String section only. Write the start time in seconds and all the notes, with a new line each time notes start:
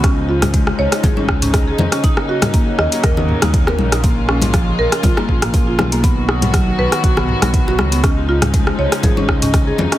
0.04 C#3 F3 G#3 D#4
2.04 F#3 A#3
4.04 G#3 F4
6.03 D#3 F#3 B3 F#4
8.04 C#3 F3 G#3 D#4